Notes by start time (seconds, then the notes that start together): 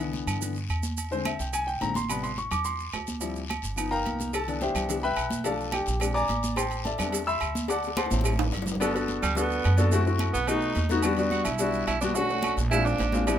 Already playing: C2
0.00 D3 E3 B3, maracas
0.13 high conga, short guiro, maracas
0.27 G2, high conga, low conga, low agogo, short guiro, claves, maracas
0.41 D3 E3 B3, high conga, low agogo, long guiro, maracas
0.55 high conga, maracas
0.69 E2, high conga, low agogo, short guiro, claves, maracas
0.83 high conga, short guiro, maracas
0.97 high conga, low agogo, long guiro, maracas
1.11 D3 G#3 C4 C5, high conga, maracas
1.25 E5, high conga, low agogo, short guiro, claves, maracas
1.39 C2 G5, high conga, short guiro, maracas
1.53 G#5, high conga, low agogo, claves, maracas
1.67 G5, high conga, maracas
1.81 A1 D3 G#3 C4 A#5, high conga, low agogo, short guiro, maracas
1.94 C6, high conga, short guiro, maracas
2.09 C3 G3 B3 B5, low agogo, long guiro, claves, maracas
2.23 C6, high conga, low agogo, maracas
2.36 C#6, high conga, short guiro, maracas
2.51 E2 D6, high conga, low conga, low agogo, short guiro, claves, maracas
2.64 C6, high conga, low agogo, long guiro, maracas
2.80 high conga, maracas
2.92 D2, high conga, low timbale, low agogo, short guiro, claves, maracas
3.07 high conga, short guiro, maracas
3.20 F3 G3 C4 E4, high conga, low agogo, long guiro, maracas
3.36 high conga, maracas
3.48 high conga, low agogo, short guiro, claves, maracas
3.62 G1, high conga, short guiro, maracas
3.76 F3 B3 D#4, high conga, low agogo, long guiro, claves, maracas
3.91 A#4 F5 G5 A#5, high conga, maracas
4.04 C2, high conga, low agogo, short guiro, maracas
4.19 high conga, short guiro, maracas
4.33 A4 A5, cowbell, low agogo, long guiro, claves, maracas
4.48 E3 B3 D4, high conga, low agogo, maracas
4.61 G4 C5 E5 G5, cowbell, high conga, short guiro, maracas
4.75 C2, cowbell, high conga, low conga, low agogo, short guiro, claves, maracas
4.89 E3 B3 D4, cowbell, high conga, low conga, low agogo, long guiro, maracas
5.03 B4 E5 G5 B5, high conga, maracas
5.16 B1, cowbell, high conga, low agogo, short guiro, claves, maracas
5.30 high conga, short guiro, maracas
5.44 F3 A3 D4 A4 D5 F5 A5, cowbell, high conga, low agogo, long guiro, maracas
5.59 high conga, maracas
5.72 G4 G5, cowbell, high conga, low agogo, short guiro, claves, maracas
5.86 A#1, cowbell, high conga, short guiro, maracas
6.00 G#3 C4 D4, cowbell, high conga, low agogo, long guiro, claves, maracas
6.14 D5 G#5 A#5 D6, high conga, maracas
6.28 A1, cowbell, high conga, low agogo, short guiro, maracas
6.43 high conga, short guiro, maracas
6.56 C5 G5 A5 C6, cowbell, high conga, low agogo, long guiro, claves, maracas
6.71 high conga, low agogo, maracas
6.84 A4 D5 E5 A5, cowbell, high conga, short guiro, maracas
6.98 E2 G3 B3 C4 D4, cowbell, high conga, low conga, low agogo, short guiro, claves, maracas
7.12 cowbell, high conga, low agogo, long guiro, maracas
7.27 E5 B5 C6 E6, high conga, maracas
7.41 D2, cowbell, high conga, low agogo, short guiro, claves, maracas
7.55 high conga, short guiro, maracas
7.68 D5 F#5 A5 D6, cowbell, high bongo, low agogo, long guiro, maracas
7.84 high conga, maracas
7.88 high bongo
7.97 C5 F#5 A5 C6, cowbell, high bongo, high conga, low agogo, short guiro, claves, maracas
8.06 low bongo
8.10 A1 F#3 C4 E4, cowbell, high conga, short guiro, maracas
8.21 cowbell, low bongo, high conga
8.25 low agogo, claves, maracas
8.33 low bongo
8.39 low bongo, high conga, high timbale, maracas
8.52 G1, cowbell, low bongo, low agogo, short guiro, maracas
8.57 low conga
8.62 low bongo, low conga
8.67 low timbale, short guiro, maracas
8.72 low bongo, low conga
8.80 B3 D4 F#4 A4, cowbell, high conga, low agogo, long guiro, claves, maracas
8.93 B3 D4 F#4 A4, high conga, low agogo, maracas
9.08 cowbell, high conga, short guiro, maracas
9.22 D2 G3, cowbell, high conga, low conga, low agogo, short guiro, claves, maracas
9.35 B3 D4 F#4 A4, cowbell, high conga, low conga, low agogo, long guiro, maracas
9.50 high conga, maracas
9.64 F#2, cowbell, high conga, low timbale, low agogo, short guiro, claves, maracas
9.77 B3 D4 F#4 A4, high conga, short guiro, maracas
9.91 A3 C4 E4 F#4, cowbell, high conga, low agogo, long guiro, maracas
10.06 A3 C4 E4 F#4, high conga, maracas
10.19 cowbell, high conga, low agogo, short guiro, claves, maracas
10.33 B1 B3, cowbell, high conga, short guiro, maracas
10.47 A3 B3 D#4 F#4, cowbell, high conga, low agogo, long guiro, claves, maracas
10.62 high conga, maracas
10.75 E2, cowbell, high conga, low agogo, short guiro, maracas
10.89 A3 B3 D#4 F#4, high conga, short guiro, maracas
11.02 G3 B3 D4 F#4, cowbell, low agogo, long guiro, claves, maracas
11.17 G3 B3 D4 F#4, high conga, low agogo, maracas
11.31 F#4, cowbell, high conga, short guiro, maracas
11.44 B1 E4, cowbell, high conga, low conga, low agogo, short guiro, claves, maracas
11.59 G3 B3 D4 F#4, cowbell, high conga, low agogo, long guiro, maracas
11.73 high conga, maracas
11.87 B1 E4, cowbell, high conga, low timbale, low agogo, short guiro, claves, maracas
12.01 G3 B3 D4 F#4, high conga, short guiro, maracas
12.15 A3 C#4 D4 F#4, cowbell, low agogo, long guiro, maracas
12.29 A3 C#4 D4 F#4, high conga, maracas
12.43 cowbell, high conga, low agogo, short guiro, claves, maracas
12.57 A#1, cowbell, high conga, short guiro, maracas
12.71 G#3 C4 D4 E4 F4, cowbell, high conga, low agogo, long guiro, claves, maracas
12.85 D4, high conga, high timbale, maracas
12.99 A1, cowbell, high conga, high timbale, low agogo, short guiro, maracas
13.12 G#3 C4 D4 F4, high conga, low timbale, short guiro, maracas
13.27 G3 B3 C4 D4 E4, cowbell, low agogo, long guiro, claves, maracas